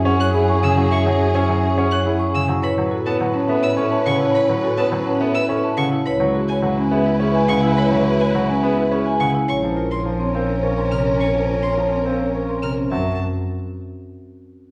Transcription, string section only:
Already playing: C#4 G#4
2.63 C#4 B4
6.05 E4 B4
9.49 C#4 A#4

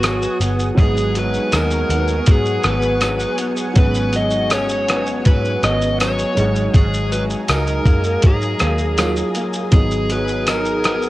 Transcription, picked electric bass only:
Already playing: G#1
0.40 G1
0.78 G#1
1.53 D#2
1.89 D#2
2.27 G#2
2.64 G#1
3.76 G#1
5.26 G#2
5.63 G#1
6.37 G#1
6.74 G#1
7.49 C#2
7.86 F#2
8.23 G#2
8.62 D#2
9.72 G#1

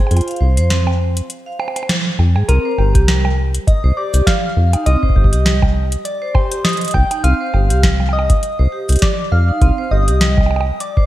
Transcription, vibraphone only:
Already playing: G#4
0.11 F4
0.28 F5
0.41 C5
0.57 C5
0.70 C4
1.46 F5
1.59 C5
1.76 C5
2.35 G#4
2.48 C4
2.65 C5
2.78 G4
2.95 G4
3.08 G3
3.84 C5
3.97 G4
4.14 G4
4.73 D#4
4.86 C4
5.03 C5
5.16 G4
5.33 G4
5.46 G3
6.22 C5
6.35 G4
6.51 G4
7.11 D#4
7.24 C4
7.41 C5
7.54 G4
7.70 G4
7.83 G3
8.59 C5
8.72 G4
8.89 G4
9.48 D#4
9.62 C4
9.78 C5
9.91 G4
10.08 G4
10.21 G3
10.97 C5

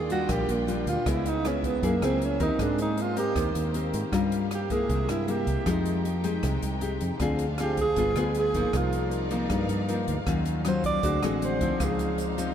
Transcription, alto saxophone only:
Already playing: G#4
0.12 F#4
0.33 G4
0.51 A#3
0.71 D4
0.89 F4
1.10 E4
1.28 D#4
1.48 C#4
1.65 B3
1.86 A#3
2.04 C4
2.25 C#4
2.43 D#4
2.62 D4
2.81 D#4
3.01 F4
3.19 G4
4.55 G4
4.72 G#4
5.11 E4
5.31 G4
5.70 D#4
7.63 G4
7.81 G#4
8.20 F4
8.39 G#4
8.77 F4
10.68 C5
10.86 D5
11.24 A4
11.45 C5
11.84 G#4

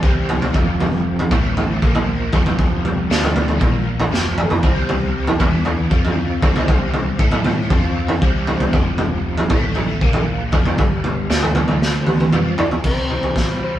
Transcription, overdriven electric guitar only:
0.03 C3 G3 C4
0.54 F2 C3 F3
1.31 A2 E3 A3
1.82 A#2 F3 A#3
2.33 F2 C3 F3
3.10 D3 A3 D4
3.61 A#2 F3 A#3
4.12 F2 C3 F3
4.63 C3 G3 C4
5.40 E3 B3 E4
5.91 F3 C4 F4
6.43 C3 G3 C4
7.19 A3 E4 A4
7.71 F3 C4 F4
8.22 C3 G3 C4
8.74 F2 C3 F3
9.51 A2 E3 A3
10.02 A#2 F3 A#3
10.53 F2 C3 F3
10.79 G2 D3 G3
11.30 D3 A3 D4
12.33 F3 C4 F4
12.85 C3
13.11 E3
13.36 G3
13.62 E3

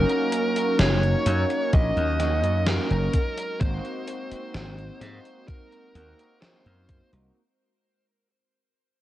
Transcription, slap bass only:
0.79 F#1
1.26 F#2
1.73 A#1
1.97 D#2
2.44 F#2
2.91 F#1
3.61 G#1
4.32 muted slap bass stroke
4.54 G#1
5.01 G#2
5.95 D#2
6.66 F#2
7.13 C2

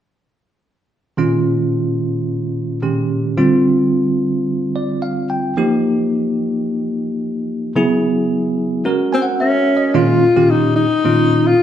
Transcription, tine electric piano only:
1.17 A#2 D#3 G#3 C#4 F4
2.82 A#2 D#3 G#3 C#4 G4
3.37 D3 G3 C4 F4
4.76 D5
5.02 F5
5.30 G5
5.57 F3 A#3 D#4 G4
7.76 C#3 F#3 B3 E4 G#4
8.85 G#3 C#4 F#4 A#4
9.13 G#5
9.22 F#5
9.40 E5
9.77 D#5
9.94 A#2 D#3 G#3 C#4 F4
10.36 A#2 D#3 G#3 C#4 G4
11.05 A#2 D#3 G#3 C#4 F4

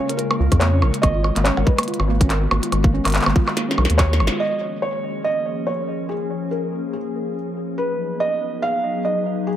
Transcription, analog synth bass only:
0.40 C#2
0.52 F2
0.82 A#1
1.03 G#1
1.36 G#1
1.57 G#1
2.00 G#1
2.51 G#1
2.72 G#1
3.05 G#1
3.26 G#1
3.78 B1
3.90 D#2
4.20 G#1

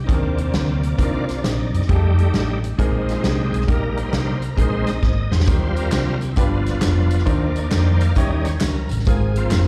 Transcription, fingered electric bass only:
0.10 D#2
0.54 D2
0.99 C2
1.44 A#1
1.73 F#2
1.90 F2
2.34 A1
2.79 A#1
3.25 C2
3.54 B1
3.69 A#1
4.14 C2
4.58 A#1
5.03 G#1
5.31 E2
5.48 D#2
5.92 C2
6.37 G1
6.83 F1
7.27 D#2
7.73 F2
8.17 D#2
8.62 C#2
8.92 A1
9.07 G#1
9.51 F1

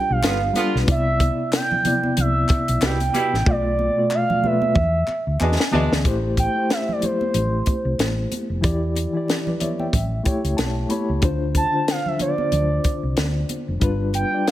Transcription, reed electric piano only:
Already playing: G3 D4 F4 G4 B4 D5
0.53 G3 D4 F4 B4
0.85 C3 B3 E4 D5
1.84 C3 B3 E4 D5
3.45 B2 A3 F4 D5
3.96 B2 A3 F4 D5
4.42 B2 A3 F4
4.46 B4
5.41 G#5
5.71 E3 B3 G#4 D5 E5
6.04 A3 E4 G4 C5
6.55 A3 E4 G4 C5
7.00 A3 E4 G4
7.04 C5
8.61 E3 E4 G4
8.65 D5
9.13 E3 E4 G4
9.17 D5
9.48 B4 D5
9.60 C#5 D5 E5
9.80 E5 G5
9.93 E5
10.23 A3 E4 G4 C#5 G5
10.57 A5
10.89 A3 E4 G4 C#5 B5
11.21 D3 D4 F4 C5
11.72 D3 D4 F4 C5
12.17 D3 D4 F4 C5
13.80 G3 D4 F4 B4
14.30 G3 D4 F4 D5

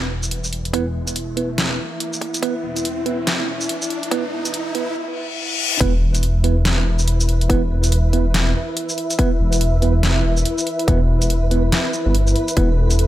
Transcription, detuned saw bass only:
0.10 E1
0.73 E1
2.63 E1
3.27 F1
3.48 E1
4.11 E1
4.32 E1
5.81 E1
6.86 E1
7.50 E1
9.40 E1
10.03 F1
10.24 E1
10.88 E1
11.09 E1
12.06 G1
12.57 E1

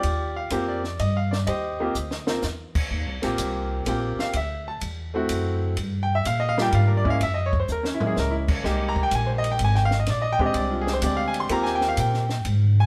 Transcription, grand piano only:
Already playing: F4 G4 D5
0.36 F5
0.52 A#3 C4 F4 G4
0.68 D5
1.00 D#5
1.17 F5
1.31 D5
1.47 G4 C5 D#5
1.80 A#3 C4 F4 G4
2.27 A#3 C4 F4 A#4
3.22 A#3 C4 F4 G4
3.86 A#3 C4 F4 G4 G5
4.20 F5
4.37 E5
4.68 A5
5.14 A3 C4 E4 F#4
6.03 G5
6.15 E5
6.27 F5
6.40 D#5
6.49 F5
6.58 G3 A#3 D4 F4
6.62 G5
6.75 F5
6.87 A#4
6.97 D5
7.04 G#3 A#3 C#4 E4
7.10 F5
7.23 E5
7.34 D#5
7.46 C#5
7.60 C5
7.72 A#4
7.83 C#4
7.94 E4
8.00 G#3 A#3 C#4 E4
8.07 G#4
8.19 A#4
8.31 E4
8.64 G#3 A#3 D#4 G4
8.89 A#5
9.03 G5
9.15 G#5
9.27 C5
9.38 D#5
9.52 G5
9.65 G#5
9.75 G5
9.85 F5
10.00 D#5
10.10 D5
10.22 D#5
10.33 G5
10.40 G#3 C4 D4 G4
10.46 D#5
10.57 D5
10.71 F4
10.81 G#4
10.93 C5
11.02 G#3 C4 D4 G4
11.06 D5
11.17 F5
11.28 G#5
11.40 C6
11.50 A#3 C4 F4 G4 A#5
11.63 G#5
11.75 G5
11.89 F5
12.00 G5
12.80 G#5

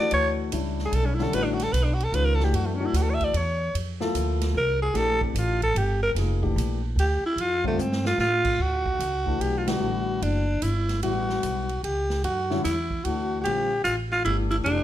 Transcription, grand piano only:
Already playing: E3 A3
0.00 D4 F#4
0.52 G3 C#4 D4 E4
1.19 D3 G3 C#4 E4
1.33 E3 A3 D4 F#4
2.12 D#3 G#3 C#4 F4
2.39 E3 A3 D4 F#4
2.80 E3 A3 D4 F#4
4.00 F3 A#3 E4 A4
4.94 E3 A3 D4 G4
6.16 F3 A#3 D#4 G#4
6.42 E3 A3 D4 G4
7.64 D3 G3 C4 F4
9.26 E3 A3 D4 F#4
9.66 D3 G3 B3 E4
9.80 E3 A3 D4 F#4
11.03 G3 B3 E4 F#4
12.50 D3 G3 C#4 E4
13.06 E3 A3 D4 F#4
13.44 D3 G3 C4 F4
14.26 E3 A3 D4 G4
14.66 E3 A3 D4 G4

